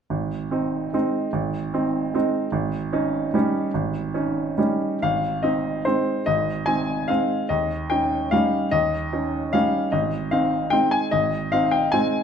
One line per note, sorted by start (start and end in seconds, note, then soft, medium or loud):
0.10 0.51 G#1 soft
0.51 0.89 C4 soft
0.51 0.90 D#4 soft
0.93 1.30 G#3 soft
0.93 1.30 C4 soft
0.93 1.30 D#4 soft
1.33 1.72 G#1 soft
1.74 2.10 C4 soft
1.74 2.11 D#4 soft
2.14 2.49 G#3 soft
2.14 2.49 C4 soft
2.14 2.50 D#4 soft
2.52 2.91 G#1 soft
2.93 3.30 C#4 soft
2.93 3.30 D#4 soft
3.34 3.70 G3 soft
3.34 3.70 C#4 soft
3.34 3.70 D#4 soft
3.74 4.13 G#1 soft
4.14 4.53 C#4 soft
4.14 4.54 D#4 soft
4.58 4.98 G3 soft
4.58 4.98 C#4 soft
4.58 4.99 D#4 soft
5.02 5.42 G#1 soft
5.02 5.43 F5 medium
5.43 5.81 C4 soft
5.43 5.81 D#4 soft
5.43 5.85 D#5 soft
5.85 6.23 G#3 soft
5.85 6.24 C4 soft
5.85 6.24 D#4 soft
5.85 6.27 C5 medium
6.26 6.66 G#1 soft
6.26 6.67 D#5 medium
6.66 7.05 C4 soft
6.66 7.05 D#4 soft
6.66 7.08 G#5 medium
7.08 7.46 G#3 soft
7.08 7.46 C4 soft
7.08 7.46 D#4 soft
7.08 7.50 F5 medium
7.49 7.89 D#2 soft
7.49 7.90 D#5 soft
7.90 8.28 C#4 soft
7.90 8.29 D#4 soft
7.90 8.32 G5 medium
8.31 8.68 G3 soft
8.31 8.69 C#4 soft
8.31 8.69 D#4 soft
8.31 8.72 F5 medium
8.71 9.11 D#2 soft
8.71 9.53 D#5 medium
9.13 9.50 C#4 soft
9.13 9.50 D#4 soft
9.53 9.90 G3 soft
9.53 9.90 C#4 soft
9.53 9.90 D#4 soft
9.53 9.93 F5 medium
9.92 10.31 G#1 soft
9.92 10.32 D#5 medium
10.31 10.68 C4 soft
10.31 10.68 D#4 soft
10.31 10.72 F5 medium
10.70 11.07 G#3 soft
10.70 11.08 C4 soft
10.70 11.08 D#4 soft
10.70 10.91 G5 medium
10.91 11.11 G#5 medium
11.11 11.51 G#1 soft
11.11 11.51 D#5 medium
11.52 11.88 C4 soft
11.52 11.89 D#4 soft
11.52 11.72 F5 medium
11.71 11.92 G5 medium
11.92 12.23 G#3 soft
11.92 12.23 C4 soft
11.92 12.23 D#4 soft
11.92 12.23 G#5 medium